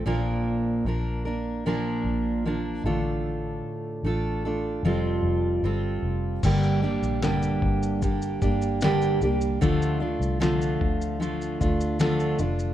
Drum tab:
CC |----------------|----------------|x---------------|----------------|
SH |----------------|----------------|xx-xxx-xxxxxxxxx|xx-xxx-xxxxxxxxx|
SD |----------------|----------------|----o-------o---|----o-------o---|
BD |----------------|----------------|o-----o-o-o-----|o-----o---o-----|